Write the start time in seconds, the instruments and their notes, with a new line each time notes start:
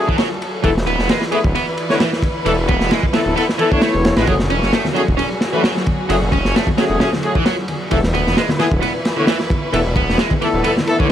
Already playing: string section F#3 F#4 G#4 A4
0.08 overdriven electric guitar E3, kick
0.18 overdriven electric guitar F#3, snare, ride
0.42 ride
0.64 detuned saw bass E1, overdriven electric guitar E3, string section E3 E4 B4, brass ensemble A3 B3 E4 A4, kick, ride
0.77 detuned saw bass E1, snare
0.87 detuned saw bass D1, overdriven electric guitar B3, ride
0.99 detuned saw bass E1, snare
1.09 overdriven electric guitar G#3, snare, ride
1.21 snare
1.32 overdriven electric guitar E3, brass ensemble A3 B3 E4 G#4, ride
1.44 detuned saw bass D1, kick
1.55 overdriven electric guitar B3, ride
1.77 ride
1.90 overdriven electric guitar D3, brass ensemble A3 B3 E4 C#5, snare
2.00 overdriven electric guitar E3, snare, ride
2.13 snare
2.23 kick, ride
2.46 detuned saw bass E1, overdriven electric guitar E3, brass ensemble A3 B3 E4 A4, ride
2.58 detuned saw bass E1
2.68 detuned saw bass D1, overdriven electric guitar B3, kick, ride
2.81 detuned saw bass E1, snare
2.91 overdriven electric guitar G#3, snare, ride
3.03 kick
3.13 overdriven electric guitar E3, brass ensemble A3 B3 E4 A4, snare, ride
3.26 detuned saw bass D1
3.36 brass ensemble A3 B3 E4 A4, overdriven electric guitar B3, ride
3.49 snare
3.59 overdriven electric guitar E3, brass ensemble A3 B3 E4 A4, ride
3.72 brass ensemble A3 B3 E4 C#5, overdriven electric guitar D4, kick
3.82 overdriven electric guitar A3, snare, ride
3.95 detuned saw bass E1
4.05 snare, ride
4.17 detuned saw bass A1, overdriven electric guitar G#3, brass ensemble A3 B3 E4 B4, snare, ride
4.27 detuned saw bass F#1, overdriven electric guitar F#3, string section F#3 F#4 G#4, brass ensemble A3 C#4 F#4 G#4, kick, ride
4.39 detuned saw bass F#1, snare, low conga
4.50 detuned saw bass E1, overdriven electric guitar C#4, ride
4.63 detuned saw bass F#1, snare
4.73 overdriven electric guitar A3, snare, ride
4.85 snare, high conga
4.95 overdriven electric guitar F#3, brass ensemble A3 C#4 F#4 G#4, ride
5.08 detuned saw bass E1, kick
5.18 overdriven electric guitar C#4, ride, low conga
5.41 snare, ride
5.53 overdriven electric guitar E3, brass ensemble A3 C#4 F#4 B4
5.64 overdriven electric guitar F#3, snare, ride
5.77 snare
5.86 kick, ride, high conga
6.09 detuned saw bass F#1, overdriven electric guitar F#3, brass ensemble A3 C#4 F#4 G#4, ride
6.21 detuned saw bass F#1, low conga
6.32 detuned saw bass E1, overdriven electric guitar C#4, kick, ride
6.44 detuned saw bass F#1, snare
6.55 overdriven electric guitar A3, snare, ride
6.67 kick, high conga
6.78 overdriven electric guitar F#3, brass ensemble A3 C#4 F#4 G#4, snare, ride
6.90 detuned saw bass E1
7.00 brass ensemble A3 C#4 F#4 G#4, overdriven electric guitar C#4, snare, ride, low conga
7.13 snare, high conga
7.23 brass ensemble A3 C#4 F#4 G#4, ride
7.35 overdriven electric guitar E3, kick, high bongo, high conga
7.46 overdriven electric guitar F#3, snare, ride
7.58 high bongo
7.68 ride, high conga
7.91 detuned saw bass E1, overdriven electric guitar E3, string section E3 E4 B4, brass ensemble A3 B3 E4 A4, kick, ride
8.03 detuned saw bass E1, snare, low conga
8.14 detuned saw bass D1, overdriven electric guitar B3, ride
8.26 detuned saw bass E1, snare
8.37 overdriven electric guitar G#3, snare, ride
8.49 snare, high conga
8.60 overdriven electric guitar E3, brass ensemble A3 B3 E4 G#4, snare, ride
8.71 detuned saw bass D1, kick
8.82 overdriven electric guitar B3, ride, low conga
9.05 snare, ride
9.17 overdriven electric guitar D3, brass ensemble A3 B3 E4 C#5
9.27 overdriven electric guitar E3, snare, ride
9.40 snare
9.50 kick, ride, high conga
9.73 detuned saw bass E1, overdriven electric guitar E3, brass ensemble A3 B3 E4 A4, ride
9.85 detuned saw bass E1, low conga
9.96 detuned saw bass D1, overdriven electric guitar B3, kick, ride
10.08 detuned saw bass E1, snare
10.18 overdriven electric guitar G#3, snare, ride
10.31 kick, high conga
10.41 overdriven electric guitar E3, brass ensemble A3 B3 E4 A4, ride
10.53 detuned saw bass D1
10.64 brass ensemble A3 B3 E4 A4, overdriven electric guitar B3, ride, low conga
10.77 snare, high conga
10.87 brass ensemble A3 B3 E4 A4, ride
10.99 overdriven electric guitar D3, brass ensemble A3 B3 E4 C#5, kick, high bongo, high conga